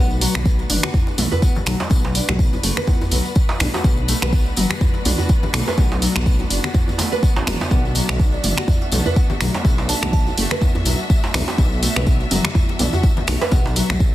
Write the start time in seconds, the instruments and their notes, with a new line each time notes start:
Already playing: detuned saw bass B1, string section A3 B3 D4 F#4 B4
0.11 tambourine
0.21 nylon-string guitar F#3, open hi-hat, tambourine, muted conga
0.35 detuned saw bass B1, finger snap, mid tom, high conga
0.45 kick, tambourine
0.59 tambourine, muted conga
0.70 detuned saw bass F#1, nylon-string guitar D4, mid tom, open hi-hat, tambourine
0.83 nylon-string guitar F#4, finger snap, high conga
0.94 kick, tambourine, djembe bass
1.07 tambourine, muted conga
1.18 detuned saw bass B1, nylon-string guitar A3, mid tom, open hi-hat, tambourine, djembe tone
1.32 nylon-string guitar B4, tambourine, djembe bass
1.42 nylon-string guitar B3, kick, tambourine, muted conga
1.56 tambourine, high conga, low conga
1.66 detuned saw bass B1, nylon-string guitar F#3, finger snap, open hi-hat, tambourine, high conga
1.80 tambourine, muted conga, djembe slap
1.90 detuned saw bass B1, kick, tambourine, high conga
2.04 tambourine, djembe slap
2.15 nylon-string guitar D4, open hi-hat, tambourine, muted conga
2.28 detuned saw bass B1, nylon-string guitar F#4, finger snap, mid tom, high conga, low conga
2.39 kick, tambourine
2.53 tambourine, muted conga, djembe tone
2.63 detuned saw bass F#1, nylon-string guitar A3, open hi-hat, tambourine
2.77 nylon-string guitar B4, finger snap, high conga
2.87 nylon-string guitar B3, kick, tambourine, djembe tone, djembe bass
3.01 tambourine, muted conga, high conga, djembe bass
3.11 detuned saw bass B1, nylon-string guitar F#3, open hi-hat, tambourine, high conga
3.25 tambourine
3.35 kick, tambourine, muted conga
3.49 tambourine, djembe slap
3.60 detuned saw bass B1, nylon-string guitar D4, finger snap, open hi-hat, tambourine, djembe tone, low conga
3.73 nylon-string guitar F#4, tambourine, muted conga, djembe slap
3.84 detuned saw bass B1, kick, tambourine, high conga
3.97 tambourine
4.08 nylon-string guitar A3, open hi-hat, tambourine, muted conga
4.22 detuned saw bass B1, nylon-string guitar B4, finger snap, mid tom, high conga
4.33 nylon-string guitar B3, kick, tambourine
4.46 tambourine, muted conga
4.56 detuned saw bass F#1, nylon-string guitar F#3, mid tom, open hi-hat, tambourine
4.70 finger snap, high conga
4.81 kick, tambourine, djembe bass
4.94 tambourine, muted conga
5.05 detuned saw bass B1, nylon-string guitar D4, mid tom, open hi-hat, tambourine, djembe tone
5.18 nylon-string guitar F#4, tambourine, djembe bass
5.29 kick, tambourine, muted conga
5.43 tambourine, high conga, low conga
5.53 detuned saw bass B1, nylon-string guitar A3, finger snap, open hi-hat, tambourine, high conga
5.67 nylon-string guitar B4, tambourine, muted conga, djembe slap
5.78 detuned saw bass B1, nylon-string guitar B3, kick, tambourine, high conga
5.92 tambourine, djembe slap
6.02 nylon-string guitar F#3, open hi-hat, tambourine, muted conga
6.15 detuned saw bass B1, finger snap, mid tom, high conga, low conga
6.26 kick, tambourine
6.39 tambourine, muted conga, djembe tone
6.50 detuned saw bass F#1, nylon-string guitar D4, open hi-hat, tambourine
6.64 nylon-string guitar F#4, finger snap, tambourine, high conga
6.74 kick, tambourine, djembe tone, djembe bass
6.88 tambourine, muted conga, high conga, djembe bass
6.98 nylon-string guitar A3, open hi-hat, tambourine, djembe slap, high conga
7.12 nylon-string guitar B4, tambourine
7.23 nylon-string guitar B3, kick, tambourine, muted conga
7.36 detuned saw bass A1, tambourine, djembe slap
7.47 detuned saw bass F#1, nylon-string guitar F#3, finger snap, mid tom, open hi-hat, tambourine, djembe tone, low conga
7.60 tambourine, muted conga, djembe slap
7.71 detuned saw bass B1, nylon-string guitar B3, string section E5, kick, tambourine, high conga
7.85 tambourine
7.95 nylon-string guitar F#3, open hi-hat, tambourine, muted conga
8.08 detuned saw bass B1, finger snap, mid tom, high conga
8.20 kick, tambourine
8.33 kalimba D5, tambourine, muted conga
8.44 detuned saw bass F#1, nylon-string guitar D4, kalimba D5, mid tom, open hi-hat, tambourine
8.57 nylon-string guitar F#4, finger snap, high conga
8.68 kick, tambourine, djembe bass
8.81 kalimba F#5, tambourine, muted conga
8.92 detuned saw bass B1, nylon-string guitar A3, kalimba F#5, mid tom, open hi-hat, tambourine, djembe tone
9.06 nylon-string guitar B4, tambourine, djembe bass
9.16 nylon-string guitar B3, kick, tambourine, muted conga
9.30 tambourine, high conga, low conga
9.41 detuned saw bass B1, nylon-string guitar F#3, finger snap, open hi-hat, tambourine, high conga
9.54 tambourine, djembe slap, muted conga
9.65 detuned saw bass B1, kick, tambourine, high conga
9.78 tambourine, djembe slap
9.89 nylon-string guitar D4, kalimba A5, open hi-hat, tambourine, muted conga
10.02 detuned saw bass B1, nylon-string guitar F#4, kalimba A5, finger snap, mid tom, high conga, low conga
10.13 kalimba A5, kick, tambourine
10.27 tambourine, muted conga, djembe tone
10.37 detuned saw bass F#1, nylon-string guitar A3, open hi-hat, tambourine
10.51 nylon-string guitar B4, finger snap, high conga
10.61 nylon-string guitar B3, kick, tambourine, djembe tone, djembe bass
10.75 tambourine, muted conga, high conga, djembe bass
10.85 detuned saw bass B1, nylon-string guitar F#3, open hi-hat, tambourine, high conga
10.99 tambourine
11.10 kick, tambourine, muted conga
11.24 tambourine, djembe slap
11.34 detuned saw bass B1, nylon-string guitar D4, finger snap, open hi-hat, tambourine, djembe tone, low conga
11.48 nylon-string guitar F#4, tambourine, djembe slap, muted conga
11.58 detuned saw bass B1, kick, tambourine, high conga
11.72 tambourine
11.83 nylon-string guitar A3, open hi-hat, tambourine, muted conga
11.96 detuned saw bass B1, nylon-string guitar B4, finger snap, mid tom, high conga
12.06 nylon-string guitar B3, kick, tambourine
12.20 tambourine, muted conga
12.31 detuned saw bass F#1, nylon-string guitar F#3, mid tom, open hi-hat, tambourine
12.44 finger snap, high conga
12.55 kick, tambourine, djembe bass
12.69 tambourine, muted conga
12.79 detuned saw bass B1, nylon-string guitar D4, mid tom, open hi-hat, tambourine, djembe tone
12.93 nylon-string guitar F#4, tambourine, djembe bass
13.03 kick, tambourine, muted conga
13.17 tambourine, high conga, low conga
13.27 detuned saw bass B1, nylon-string guitar A3, finger snap, open hi-hat, tambourine, high conga
13.41 nylon-string guitar B4, tambourine, djembe slap, muted conga
13.51 detuned saw bass B1, nylon-string guitar B3, kick, tambourine, high conga
13.66 tambourine, djembe slap
13.76 nylon-string guitar F#3, open hi-hat, tambourine, muted conga
13.90 detuned saw bass B1, finger snap, mid tom, high conga, low conga
14.00 kick, tambourine